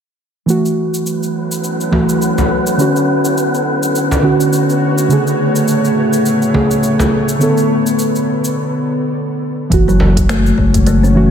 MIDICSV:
0, 0, Header, 1, 8, 480
1, 0, Start_track
1, 0, Key_signature, 3, "minor"
1, 0, Tempo, 576923
1, 406, Time_signature, 4, 2, 24, 8
1, 9409, End_track
2, 0, Start_track
2, 0, Title_t, "Synth texture"
2, 0, Program_c, 0, 99
2, 393, Note_on_c, 0, 71, 78
2, 394, Note_on_c, 0, 59, 78
2, 7120, Note_off_c, 0, 59, 0
2, 7120, Note_off_c, 0, 71, 0
2, 8086, Note_on_c, 0, 61, 79
2, 8087, Note_on_c, 0, 73, 80
2, 9409, Note_off_c, 0, 61, 0
2, 9409, Note_off_c, 0, 73, 0
2, 9409, End_track
3, 0, Start_track
3, 0, Title_t, "Synth drone"
3, 0, Program_c, 1, 95
3, 412, Note_on_c, 1, 54, 75
3, 665, Note_on_c, 1, 61, 71
3, 747, Note_on_c, 1, 64, 69
3, 757, Note_on_c, 1, 69, 86
3, 2323, Note_on_c, 1, 50, 65
3, 2329, Note_off_c, 1, 54, 0
3, 2488, Note_on_c, 1, 66, 87
3, 2583, Note_on_c, 1, 57, 66
3, 2614, Note_on_c, 1, 73, 84
3, 3099, Note_off_c, 1, 69, 0
3, 3100, Note_off_c, 1, 61, 0
3, 3101, Note_off_c, 1, 64, 0
3, 4244, Note_off_c, 1, 50, 0
3, 4245, Note_on_c, 1, 45, 81
3, 4864, Note_off_c, 1, 66, 0
3, 4894, Note_on_c, 1, 68, 74
3, 6159, Note_off_c, 1, 73, 0
3, 6161, Note_off_c, 1, 68, 0
3, 6164, Note_off_c, 1, 57, 0
3, 6165, Note_off_c, 1, 45, 0
3, 8082, Note_on_c, 1, 54, 77
3, 8332, Note_on_c, 1, 61, 91
3, 8755, Note_on_c, 1, 76, 70
3, 9409, Note_off_c, 1, 54, 0
3, 9409, Note_off_c, 1, 61, 0
3, 9409, Note_off_c, 1, 76, 0
3, 9409, End_track
4, 0, Start_track
4, 0, Title_t, "Kalimba"
4, 0, Program_c, 2, 108
4, 8220, Note_on_c, 2, 54, 69
4, 8319, Note_off_c, 2, 54, 0
4, 8563, Note_on_c, 2, 57, 96
4, 8695, Note_off_c, 2, 57, 0
4, 8800, Note_on_c, 2, 56, 69
4, 9033, Note_off_c, 2, 56, 0
4, 9041, Note_on_c, 2, 57, 84
4, 9167, Note_off_c, 2, 57, 0
4, 9180, Note_on_c, 2, 61, 68
4, 9408, Note_off_c, 2, 61, 0
4, 9409, End_track
5, 0, Start_track
5, 0, Title_t, "Synth keys"
5, 0, Program_c, 3, 88
5, 383, Note_on_c, 3, 52, 77
5, 399, Note_on_c, 3, 57, 76
5, 416, Note_on_c, 3, 66, 89
5, 573, Control_c, 3, 64, 127
5, 1570, Note_off_c, 3, 52, 0
5, 1578, Note_off_c, 3, 57, 0
5, 1586, Note_off_c, 3, 66, 0
5, 1594, Note_on_c, 3, 52, 89
5, 1602, Note_on_c, 3, 57, 83
5, 1611, Note_on_c, 3, 66, 93
5, 1768, Note_off_c, 3, 52, 0
5, 1772, Note_off_c, 3, 57, 0
5, 1776, Note_off_c, 3, 66, 0
5, 2308, Note_on_c, 3, 50, 84
5, 2323, Note_on_c, 3, 61, 77
5, 2339, Control_c, 3, 64, 0
5, 2340, Note_on_c, 3, 66, 91
5, 2492, Control_c, 3, 64, 127
5, 3492, Note_off_c, 3, 50, 0
5, 3500, Note_off_c, 3, 61, 0
5, 3508, Note_off_c, 3, 66, 0
5, 3514, Note_on_c, 3, 50, 92
5, 3522, Note_on_c, 3, 61, 82
5, 3531, Note_on_c, 3, 66, 104
5, 3688, Note_off_c, 3, 50, 0
5, 3692, Note_off_c, 3, 61, 0
5, 3697, Note_off_c, 3, 66, 0
5, 4231, Note_on_c, 3, 49, 89
5, 4247, Note_on_c, 3, 57, 81
5, 4258, Control_c, 3, 64, 0
5, 4265, Note_on_c, 3, 68, 96
5, 4426, Control_c, 3, 64, 127
5, 5414, Note_off_c, 3, 49, 0
5, 5422, Note_off_c, 3, 57, 0
5, 5431, Note_off_c, 3, 68, 0
5, 5439, Note_on_c, 3, 49, 95
5, 5447, Note_on_c, 3, 57, 85
5, 5455, Note_on_c, 3, 68, 95
5, 5611, Note_off_c, 3, 49, 0
5, 5615, Note_off_c, 3, 57, 0
5, 5619, Note_off_c, 3, 68, 0
5, 6147, Note_on_c, 3, 50, 82
5, 6163, Note_on_c, 3, 59, 80
5, 6177, Control_c, 3, 64, 0
5, 6181, Note_on_c, 3, 69, 95
5, 6328, Control_c, 3, 64, 127
5, 7332, Note_off_c, 3, 50, 0
5, 7340, Note_off_c, 3, 59, 0
5, 7349, Note_off_c, 3, 69, 0
5, 8068, Note_on_c, 3, 52, 90
5, 8097, Control_c, 3, 64, 0
5, 8101, Note_on_c, 3, 66, 98
5, 8226, Control_c, 3, 64, 127
5, 9253, Note_off_c, 3, 52, 0
5, 9269, Note_off_c, 3, 66, 0
5, 9276, Note_on_c, 3, 52, 99
5, 9283, Note_on_c, 3, 57, 80
5, 9293, Note_on_c, 3, 66, 106
5, 9409, Note_off_c, 3, 52, 0
5, 9409, Note_off_c, 3, 57, 0
5, 9409, Note_off_c, 3, 66, 0
5, 9409, End_track
6, 0, Start_track
6, 0, Title_t, "Analog synth bass"
6, 0, Program_c, 4, 38
6, 8084, Note_on_c, 4, 30, 87
6, 8747, Note_off_c, 4, 30, 0
6, 8803, Note_on_c, 4, 30, 99
6, 9409, Note_off_c, 4, 30, 0
6, 9409, End_track
7, 0, Start_track
7, 0, Title_t, "Frame drum"
7, 1602, Note_on_c, 9, 64, 74
7, 1685, Note_off_c, 9, 64, 0
7, 1980, Note_on_c, 9, 64, 78
7, 2064, Note_off_c, 9, 64, 0
7, 3422, Note_on_c, 9, 64, 83
7, 3506, Note_off_c, 9, 64, 0
7, 5444, Note_on_c, 9, 64, 78
7, 5527, Note_off_c, 9, 64, 0
7, 5819, Note_on_c, 9, 64, 89
7, 5902, Note_off_c, 9, 64, 0
7, 8319, Note_on_c, 9, 64, 90
7, 8402, Note_off_c, 9, 64, 0
7, 9409, End_track
8, 0, Start_track
8, 0, Title_t, "Drums"
8, 406, Note_on_c, 9, 69, 45
8, 489, Note_off_c, 9, 69, 0
8, 544, Note_on_c, 9, 69, 27
8, 628, Note_off_c, 9, 69, 0
8, 783, Note_on_c, 9, 69, 55
8, 866, Note_off_c, 9, 69, 0
8, 884, Note_on_c, 9, 69, 47
8, 968, Note_off_c, 9, 69, 0
8, 1023, Note_on_c, 9, 69, 29
8, 1106, Note_off_c, 9, 69, 0
8, 1261, Note_on_c, 9, 69, 56
8, 1344, Note_off_c, 9, 69, 0
8, 1363, Note_on_c, 9, 69, 47
8, 1447, Note_off_c, 9, 69, 0
8, 1502, Note_on_c, 9, 69, 29
8, 1585, Note_off_c, 9, 69, 0
8, 1740, Note_on_c, 9, 69, 53
8, 1823, Note_off_c, 9, 69, 0
8, 1845, Note_on_c, 9, 69, 46
8, 1928, Note_off_c, 9, 69, 0
8, 1980, Note_on_c, 9, 69, 29
8, 2063, Note_off_c, 9, 69, 0
8, 2218, Note_on_c, 9, 69, 63
8, 2302, Note_off_c, 9, 69, 0
8, 2323, Note_on_c, 9, 69, 45
8, 2406, Note_off_c, 9, 69, 0
8, 2463, Note_on_c, 9, 69, 29
8, 2546, Note_off_c, 9, 69, 0
8, 2702, Note_on_c, 9, 69, 60
8, 2785, Note_off_c, 9, 69, 0
8, 2808, Note_on_c, 9, 69, 53
8, 2891, Note_off_c, 9, 69, 0
8, 2948, Note_on_c, 9, 69, 31
8, 3031, Note_off_c, 9, 69, 0
8, 3185, Note_on_c, 9, 69, 63
8, 3269, Note_off_c, 9, 69, 0
8, 3290, Note_on_c, 9, 69, 49
8, 3373, Note_off_c, 9, 69, 0
8, 3426, Note_on_c, 9, 69, 30
8, 3509, Note_off_c, 9, 69, 0
8, 3665, Note_on_c, 9, 69, 60
8, 3748, Note_off_c, 9, 69, 0
8, 3768, Note_on_c, 9, 69, 51
8, 3851, Note_off_c, 9, 69, 0
8, 3906, Note_on_c, 9, 69, 29
8, 3990, Note_off_c, 9, 69, 0
8, 4143, Note_on_c, 9, 69, 64
8, 4226, Note_off_c, 9, 69, 0
8, 4245, Note_on_c, 9, 69, 48
8, 4328, Note_off_c, 9, 69, 0
8, 4386, Note_on_c, 9, 69, 30
8, 4469, Note_off_c, 9, 69, 0
8, 4623, Note_on_c, 9, 69, 61
8, 4706, Note_off_c, 9, 69, 0
8, 4725, Note_on_c, 9, 69, 55
8, 4808, Note_off_c, 9, 69, 0
8, 4864, Note_on_c, 9, 69, 32
8, 4947, Note_off_c, 9, 69, 0
8, 5100, Note_on_c, 9, 69, 58
8, 5183, Note_off_c, 9, 69, 0
8, 5205, Note_on_c, 9, 69, 49
8, 5288, Note_off_c, 9, 69, 0
8, 5342, Note_on_c, 9, 69, 32
8, 5425, Note_off_c, 9, 69, 0
8, 5582, Note_on_c, 9, 69, 62
8, 5666, Note_off_c, 9, 69, 0
8, 5684, Note_on_c, 9, 69, 52
8, 5767, Note_off_c, 9, 69, 0
8, 5824, Note_on_c, 9, 69, 32
8, 5907, Note_off_c, 9, 69, 0
8, 6062, Note_on_c, 9, 69, 67
8, 6145, Note_off_c, 9, 69, 0
8, 6165, Note_on_c, 9, 69, 50
8, 6248, Note_off_c, 9, 69, 0
8, 6301, Note_on_c, 9, 69, 31
8, 6385, Note_off_c, 9, 69, 0
8, 6544, Note_on_c, 9, 69, 64
8, 6627, Note_off_c, 9, 69, 0
8, 6647, Note_on_c, 9, 69, 54
8, 6730, Note_off_c, 9, 69, 0
8, 6784, Note_on_c, 9, 69, 33
8, 6867, Note_off_c, 9, 69, 0
8, 7026, Note_on_c, 9, 69, 64
8, 7109, Note_off_c, 9, 69, 0
8, 8083, Note_on_c, 9, 36, 108
8, 8085, Note_on_c, 9, 42, 37
8, 8090, Note_on_c, 9, 69, 45
8, 8166, Note_off_c, 9, 36, 0
8, 8168, Note_off_c, 9, 42, 0
8, 8173, Note_off_c, 9, 69, 0
8, 8227, Note_on_c, 9, 69, 31
8, 8311, Note_off_c, 9, 69, 0
8, 8459, Note_on_c, 9, 36, 100
8, 8462, Note_on_c, 9, 42, 50
8, 8467, Note_on_c, 9, 69, 59
8, 8543, Note_off_c, 9, 36, 0
8, 8546, Note_off_c, 9, 42, 0
8, 8550, Note_off_c, 9, 69, 0
8, 8564, Note_on_c, 9, 26, 77
8, 8564, Note_on_c, 9, 42, 45
8, 8569, Note_on_c, 9, 69, 52
8, 8647, Note_off_c, 9, 26, 0
8, 8647, Note_off_c, 9, 42, 0
8, 8652, Note_off_c, 9, 69, 0
8, 8704, Note_on_c, 9, 69, 31
8, 8787, Note_off_c, 9, 69, 0
8, 8802, Note_on_c, 9, 36, 54
8, 8886, Note_off_c, 9, 36, 0
8, 8939, Note_on_c, 9, 42, 56
8, 8940, Note_on_c, 9, 36, 106
8, 8943, Note_on_c, 9, 69, 62
8, 9022, Note_off_c, 9, 42, 0
8, 9023, Note_off_c, 9, 36, 0
8, 9027, Note_off_c, 9, 69, 0
8, 9040, Note_on_c, 9, 42, 40
8, 9045, Note_on_c, 9, 69, 50
8, 9123, Note_off_c, 9, 42, 0
8, 9128, Note_off_c, 9, 69, 0
8, 9187, Note_on_c, 9, 69, 30
8, 9270, Note_off_c, 9, 69, 0
8, 9409, End_track
0, 0, End_of_file